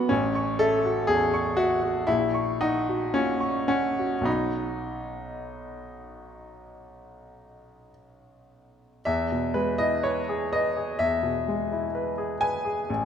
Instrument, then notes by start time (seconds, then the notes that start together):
grand piano
Already playing: F#2 F#3 A3 B3 F#4 F#5 D6
0.09 A1 C#4
0.35 C#6
0.59 A4 E5
0.85 F#4
1.07 E2 G#4
1.34 C#6
1.57 F#4 E5
1.83 F#4
2.07 A#1 E4
2.34 C#6
2.61 D#4 F#5
2.89 F#4
3.14 A#2 C#4
3.40 C#6
3.68 C#4 F#5
3.99 F#4
4.21 B1 F#4 F#5 B5
4.25 D#4
9.05 E2 E5
9.32 B2
9.54 G#3 B4
9.78 E4 D#5
10.03 B4 C#5
10.29 G#4
10.53 B4 D#5
10.76 G#4
10.99 E2 E5
11.23 B2
11.48 G#3
11.72 E4
11.95 B4
12.18 G#4
12.41 B4 G#5
12.65 G#4
12.90 A1